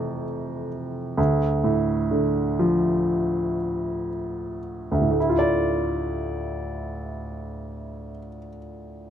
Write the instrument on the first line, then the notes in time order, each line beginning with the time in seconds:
grand piano
Already playing: F2 C3 E3 A3
1.17 D2
1.64 A2
2.11 D3
2.59 F3
4.91 D2
5.01 A2
5.11 A3
5.20 E4
5.29 F4
5.39 D5